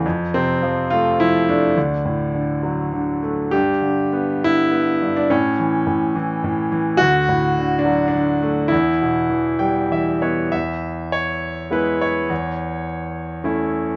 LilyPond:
<<
  \new Staff \with { instrumentName = "Grand piano" } { \time 3/4 \key e \dorian \tempo 4 = 104 r8 c'4 f'8 e'8 d'8~ | d'2~ d'8 r8 | g'4 r8 e'4~ e'16 d'16 | cis'2~ cis'8 r8 |
fis'4. d'8 d'4 | e'2~ e'8 r8 | \key e \major e''4 cis''4 b'8 cis''8~ | cis''4 r2 | }
  \new Staff \with { instrumentName = "Grand piano" } { \clef bass \time 3/4 \key e \dorian f,8 c8 f8 a8 f8 a8 | d,8 a,8 d8 fis8 d8 a8 | g,8 d8 b8 d8 b8 g,8 | a,8 e8 a,8 e8 a,8 e8 |
d,8 a,8 d8 fis8 d8 a8 | e,8 b,8 e8 <g g''>8 <e e''>8 <b cis''>8 | \key e \major e,2 <gis b e'>4 | e,2 <a cis' e'>4 | }
>>